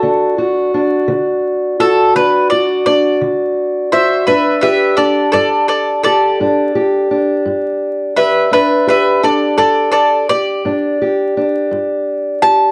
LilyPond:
<<
  \new Staff \with { instrumentName = "Mandolin" } { \time 12/8 \key g \lydian \tempo 4. = 56 a'8 r2 a'8 b'8 d''8 d''8 r4 <c'' e''>8 | <b' e''>8 <b' e''>8 <a' d''>8 <a' d''>8 <a' d''>8 <a' d''>2 r4 <b' e''>8 | <b' e''>8 <b' e''>8 <a' d''>8 <a' d''>8 <a' d''>8 d''2 r4 a''8 | }
  \new Staff \with { instrumentName = "Steel-string acoustic guitar" } { \time 12/8 \key g \lydian << { <d' fis'>8 fis'8 d'4. fis'8 d'8 fis'8 d'4. fis'8 | d'8 g'8 d'4. g'8 d'8 g'8 d'4. g'8 | d'8 g'8 d'4. g'8 d'8 g'8 d'4. g'8 | } \\ { d4 r8 d4 r8 d4 r8 d4 r8 | g,4 r8 g,4 r8 g,4 r8 g,4 r8 | g,4 r8 g,4 r8 g,4 r8 g,4 r8 | } >> }
>>